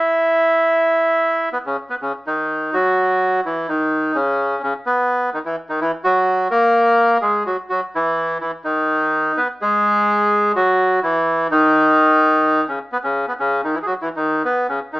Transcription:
0.00 1.49 E4 medium
0.00 1.49 E5 medium
1.53 1.58 B3 medium
1.53 1.59 B4 medium
1.66 1.76 C#3 medium
1.66 1.77 C#4 medium
1.90 1.95 B3 medium
1.90 1.95 B4 medium
2.02 2.12 C#3 medium
2.02 2.12 C#4 medium
2.26 2.70 D#3 medium
2.26 2.75 D#4 medium
2.73 3.41 F#3 medium
2.73 3.41 F#4 medium
3.45 3.67 E3 medium
3.45 3.69 E4 medium
3.69 4.12 D#3 medium
3.69 4.17 D#4 medium
4.15 4.59 C#3 medium
4.15 4.62 C#4 medium
4.63 4.73 C#3 medium
4.63 4.74 C#4 medium
4.86 5.30 B3 medium
4.86 5.30 B4 medium
5.34 5.39 D#3 medium
5.34 5.39 D#4 medium
5.45 5.56 E3 medium
5.45 5.56 E4 medium
5.69 5.80 D#3 medium
5.69 5.80 D#4 medium
5.81 5.92 E3 medium
5.81 5.91 E4 medium
6.04 6.48 F#3 medium
6.04 6.48 F#4 medium
6.51 7.18 A#3 medium
6.51 7.17 A#4 loud
7.21 7.44 G#3 medium
7.21 7.43 G#4 medium
7.46 7.57 F#3 medium
7.46 7.57 F#4 medium
7.70 7.81 F#3 medium
7.70 7.80 F#4 medium
7.95 8.38 E3 medium
7.95 8.38 E4 medium
8.41 8.52 E3 medium
8.41 8.51 E4 medium
8.64 9.32 D#3 medium
8.64 9.38 D#4 medium
9.37 9.48 B3 medium
9.37 9.47 B4 medium
9.61 10.52 G#3 medium
9.61 10.52 G#4 loud
10.56 11.00 F#3 medium
10.56 11.00 F#4 loud
11.03 11.48 E3 medium
11.03 11.47 E4 loud
11.51 12.65 D#3 medium
11.51 12.65 D#4 loud
12.68 12.79 C#3 medium
12.68 12.79 C#4 medium
12.92 12.97 B3 medium
12.92 12.98 B4 medium
13.04 13.26 C#3 medium
13.04 13.26 C#4 medium
13.28 13.33 B3 medium
13.28 13.34 B4 medium
13.39 13.62 C#3 medium
13.39 13.61 C#4 medium
13.64 13.75 D#3 medium
13.64 13.75 D#4 medium
13.75 13.79 E3 medium
13.75 13.78 E4 medium
13.82 13.86 G#4 medium
13.86 13.94 F#3 medium
13.86 13.93 F#4 medium
14.01 14.09 E3 medium
14.01 14.09 E4 medium
14.16 14.43 D#3 medium
14.16 14.42 D#4 medium
14.45 14.67 B3 medium
14.45 14.67 B4 medium
14.69 14.80 C#3 medium
14.69 14.80 C#4 medium
14.93 15.00 D#3 medium
14.93 15.00 D#4 medium

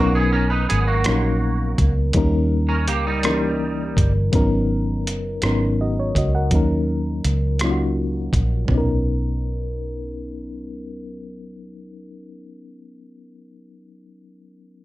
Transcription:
0.00 0.65 B1 loud
0.00 0.86 F#3 medium
0.00 0.14 A#3 medium
0.00 0.87 B3 medium
0.00 0.87 C#4 medium
0.00 0.88 D#4 medium
0.00 0.14 F#4 medium
0.00 0.88 A#4 medium
0.15 0.32 B3 medium
0.15 0.32 G#4 medium
0.32 0.50 C#4 medium
0.32 0.50 A#4 medium
0.50 0.68 D#4 medium
0.50 0.68 B4 medium
0.69 1.03 G#1 medium
0.69 0.86 B3 medium
0.69 0.86 G#4 medium
0.69 closed hi-hat medium
0.87 1.92 A#3 soft
0.87 1.92 F#4 medium
1.04 1.75 A#1 medium
1.04 1.95 F#3 medium
1.04 1.95 A#3 medium
1.04 1.96 C#4 medium
1.04 1.97 D#4 medium
1.04 cross-stick loud
1.04 closed hi-hat medium
1.09 1.97 A#4 medium
1.78 2.11 C#2 medium
1.78 kick medium
1.78 closed hi-hat medium
2.13 2.90 D#2 medium
2.13 3.04 G3 medium
2.13 3.05 A#3 medium
2.13 3.05 C#4 medium
2.13 3.05 D#4 medium
2.13 kick medium
2.13 closed hi-hat medium
2.17 3.06 A#4 medium
2.69 2.86 C#4 soft
2.69 2.86 A#4 medium
2.88 3.93 C#2 medium
2.88 3.05 A#3 medium
2.88 3.05 G4 medium
2.88 closed hi-hat medium
3.07 4.12 G3 medium
3.07 4.11 D#4 medium
3.23 3.30 E3 medium
3.23 4.14 A#3 medium
3.23 4.14 C#4 medium
3.23 4.14 D#4 medium
3.23 4.15 A#4 medium
3.23 cross-stick medium
3.23 closed hi-hat medium
3.30 4.17 G3 medium
3.97 4.30 G1 medium
3.97 kick medium
3.97 closed hi-hat medium
4.32 5.07 G#1 medium
4.32 5.22 F#3 medium
4.32 5.22 B3 medium
4.32 5.23 C#4 medium
4.32 5.24 D#4 medium
4.32 5.24 A#4 medium
4.32 kick medium
4.32 closed hi-hat medium
5.07 5.39 F#1 medium
5.07 closed hi-hat medium
5.42 6.11 G#1 medium
5.42 6.32 F#3 medium
5.42 6.32 B3 medium
5.42 6.32 C#4 medium
5.42 6.33 D#4 medium
5.42 5.80 A#4 medium
5.42 cross-stick medium
5.42 closed hi-hat medium
5.81 5.97 F#4 soft
5.81 5.97 D#5 soft
5.99 6.15 C#5 medium
6.15 6.52 C#2 medium
6.15 6.34 F#4 soft
6.15 6.34 D#5 medium
6.15 kick medium
6.15 closed hi-hat medium
6.35 6.54 A#4 soft
6.35 6.68 F#5 medium
6.51 7.20 D#2 medium
6.51 7.41 F#3 medium
6.51 7.42 A#3 medium
6.51 7.42 C#4 medium
6.51 7.42 D#4 medium
6.51 kick medium
6.51 closed hi-hat medium
6.55 7.43 A#4 medium
7.24 8.29 C#2 medium
7.24 closed hi-hat medium
7.59 8.50 F#3 medium
7.59 8.51 A#3 medium
7.59 8.51 C#4 medium
7.59 cross-stick medium
7.59 closed hi-hat soft
7.64 8.52 D#4 medium
7.64 7.69 F4 medium
7.71 8.55 F#4 medium
8.33 8.66 A#1 medium
8.33 kick medium
8.33 closed hi-hat medium
8.65 13.34 B1 medium
8.65 13.30 F#3 medium
8.65 13.33 B3 soft
8.65 kick medium
8.65 floor tom medium
8.72 13.37 C#4 soft
8.72 13.39 D#4 medium
8.78 13.43 A#4 medium

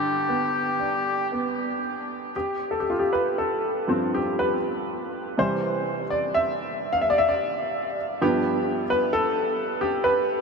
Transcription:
0.00 2.31 G2 medium
0.00 1.80 D3 soft
0.00 1.28 G4 medium
0.29 1.31 B3 soft
0.79 2.31 D4 soft
1.32 2.32 B3 soft
2.36 2.74 G4 medium
2.71 2.81 A4 medium
2.80 2.90 G4 medium
2.90 3.00 F4 medium
2.99 3.09 G4 soft
3.13 3.38 B4 medium
3.38 4.16 A4 medium
3.87 4.55 G2 soft
3.87 4.55 F3 soft
3.87 4.55 C4 soft
4.14 4.37 G4 medium
4.39 5.41 B4 medium
5.37 6.02 C3 soft
5.37 6.02 E3 soft
5.37 6.02 G3 medium
5.37 6.13 C5 medium
6.10 6.35 D5 medium
6.34 6.96 E5 medium
6.93 7.02 F5 medium
7.01 7.11 E5 medium
7.10 7.19 D5 medium
7.18 7.28 E5 medium
7.29 7.95 D5 medium
8.21 8.82 G2 medium
8.21 8.82 F3 soft
8.21 8.82 B3 medium
8.21 8.92 G4 medium
8.90 9.14 B4 medium
9.13 9.85 A4 medium
9.81 10.06 G4 medium
10.04 10.41 B4 medium

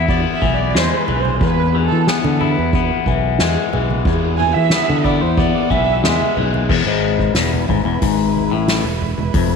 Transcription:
0.00 0.24 E2 medium
0.00 1.42 E2 medium
0.00 0.41 E3 medium
0.00 0.74 G#3 medium
0.00 2.40 E4 medium
0.09 2.08 B3 medium
0.09 0.19 D5 loud
0.09 kick loud
0.09 ride loud
0.33 0.53 E5 medium
0.42 0.73 B1 medium
0.42 1.08 E3 medium
0.42 kick medium
0.42 ride medium
0.42 high conga medium
0.55 0.76 D5 medium
0.74 0.91 E2 loud
0.74 3.40 G#3 medium
0.74 0.98 C5 loud
0.74 snare loud
0.74 ride loud
0.99 1.20 B4 medium
1.08 1.40 B1 loud
1.08 1.74 E3 medium
1.08 ride medium
1.08 low conga medium
1.20 1.42 C5 medium
1.25 high conga medium
1.41 1.88 E2 loud
1.41 4.06 E2 medium
1.41 1.82 B4 loud
1.41 kick loud
1.41 ride loud
1.75 3.07 E3 medium
1.75 ride medium
1.86 2.08 A4 medium
1.92 2.07 E3 medium
2.07 2.75 B3 medium
2.07 2.30 G#4 medium
2.07 snare loud
2.07 ride medium
2.24 2.55 D3 loud
2.24 high conga medium
2.31 2.51 A4 medium
2.40 5.04 E4 medium
2.40 ride medium
2.40 low conga medium
2.51 2.84 B4 medium
2.58 2.89 E2 medium
2.73 4.40 B3 medium
2.73 kick loud
2.73 ride medium
3.06 3.38 B1 medium
3.06 3.72 E3 medium
3.06 kick medium
3.06 ride medium
3.39 3.56 E2 loud
3.39 5.05 G#3 medium
3.39 snare loud
3.39 ride loud
3.72 4.04 B1 medium
3.72 4.38 E3 medium
3.72 ride medium
3.72 low conga medium
3.90 high conga medium
4.05 4.53 E2 loud
4.05 5.72 E2 medium
4.05 kick loud
4.05 ride loud
4.38 5.69 E3 medium
4.38 4.54 G#5 loud
4.38 ride medium
4.38 low conga medium
4.54 4.71 E3 medium
4.54 5.05 E5 loud
4.70 5.36 B3 medium
4.70 snare loud
4.70 ride loud
4.89 5.20 D3 loud
4.89 high conga medium
5.04 6.70 E4 medium
5.04 5.21 D5 medium
5.04 kick medium
5.04 ride medium
5.04 low conga medium
5.22 5.54 E2 medium
5.22 5.38 C5 medium
5.37 6.70 B3 medium
5.37 5.71 D5 medium
5.37 kick loud
5.37 ride loud
5.37 low conga medium
5.70 6.02 B1 medium
5.70 6.36 E3 medium
5.70 6.03 E5 loud
5.70 kick medium
5.70 ride medium
5.70 high conga medium
6.04 6.20 E2 loud
6.04 6.70 G#3 medium
6.04 6.35 E5 medium
6.04 snare loud
6.04 ride loud
6.04 high conga medium
6.21 high conga medium
6.37 6.68 B1 medium
6.37 6.70 E3 medium
6.37 ride medium
6.37 low conga medium
6.54 high conga medium
6.69 6.85 E1 medium
6.69 6.86 E2 loud
6.69 9.56 G#3 medium
6.69 9.56 E4 medium
6.69 9.56 B4 medium
6.69 kick loud
6.69 crash loud
6.85 7.32 G#1 medium
6.85 7.35 G#2 loud
7.19 kick medium
7.34 7.66 E1 medium
7.34 7.68 E2 loud
7.34 snare loud
7.34 open hi-hat medium
7.54 high conga medium
7.69 7.84 G#1 loud
7.69 7.85 G#2 medium
7.69 kick medium
7.69 low conga medium
7.85 8.01 E1 medium
7.85 8.01 E2 medium
8.02 8.48 G#1 medium
8.02 8.51 G#2 loud
8.02 kick loud
8.02 open hi-hat medium
8.37 high conga medium
8.51 8.82 A1 medium
8.51 8.84 A2 loud
8.68 snare loud
8.68 open hi-hat medium
8.84 9.15 E1 medium
8.84 9.11 E2 medium
9.02 low conga medium
9.18 9.33 E1 medium
9.18 9.34 E2 medium
9.18 high conga medium
9.34 9.56 F1 medium
9.34 9.56 F2 loud
9.34 kick loud
9.34 open hi-hat medium

